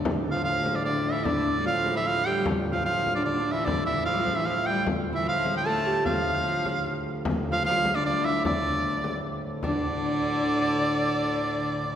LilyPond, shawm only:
\new Staff \with { instrumentName = "Shawm" } { \time 3/4 \key d \minor \tempo 4 = 150 \tuplet 3/2 { r4 f''8 } f''8. d''16 \tuplet 3/2 { d''4 e''8 } | d''4 f''8. e''16 f''8 g''8 | \tuplet 3/2 { r4 f''8 } f''8. d''16 \tuplet 3/2 { d''4 e''8 } | d''8 e''8 f''8. e''16 f''8 g''8 |
\tuplet 3/2 { r4 e''8 } f''8. g''16 a''4 | f''2~ f''8 r8 | \tuplet 3/2 { r4 f''8 } f''8. d''16 d''8 e''8 | d''2 r4 |
d''2.~ | d''2. | }